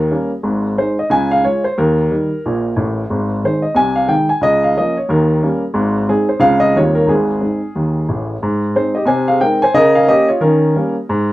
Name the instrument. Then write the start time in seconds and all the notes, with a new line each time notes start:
upright piano
Already playing: D#2 D#3 A#4
0.11 G3 A#3 C#4
0.43 G#1 G#2
0.78 G#3 D#4 C5
0.99 D#5
1.10 C#2 C#3 G#5
1.31 F5
1.44 G#3 F4 C#5
1.64 C5
1.78 D#2 D#3 A#4
2.10 D#3 G3 D#4
2.46 A#1 A#2
2.76 A1 A2
3.10 G#1 G#2
3.44 D#3 G#3 D#4 C5
3.62 D#5
3.75 C2 C3 G#5
3.96 F5
4.08 D#3 G#3 D#4 G5
4.29 G#5
4.41 C#2 C#3 D#5
4.64 F5
4.77 F3 A#3 C#4 D#5
4.97 C#5
5.09 D#2 D#3 A#4
5.43 G3 A#3 C#4
5.74 G#1 G#2
6.09 G#3 C4 D#4 G#4
6.29 C5
6.40 C#2 C#3 G#3 C4 F4 F5
6.60 D#5
6.75 D#2 D#3 G3 C4 F4 C#5
6.95 A#4
7.07 G#1 G#2 G#4
7.41 G#3 C4 D#4
7.75 D#2 D#3
8.09 A1 A2
8.43 G#2
8.75 G#3 C4 D#4 C5
8.95 G4 D#5
9.06 C3 C5 G#5
9.28 G#4 F5
9.41 G#3 C4 D#4 A#4 G5
9.62 C5 G#5
9.74 C#3 A#4 D#5
9.95 G#4 F5
10.08 A#3 C#4 G4 D#5
10.28 F4 C#5
10.41 D#3 C#4 A#4
10.76 G3 A#3 C#4
11.09 G#2